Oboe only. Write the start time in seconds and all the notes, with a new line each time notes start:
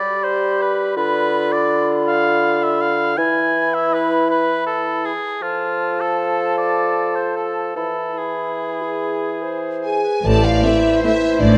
Already playing: D5
0.24 C5
0.61 B4
0.97 B4
1.52 D5
2.07 F5
2.63 E5
2.81 F5
3.17 G#5
3.74 E5
3.94 B4
4.30 B4
4.66 A4
5.05 G#4
5.42 F4
6.01 A4
6.58 D5
7.16 C5
7.36 A4
7.76 A4
8.18 G#4
10.24 C5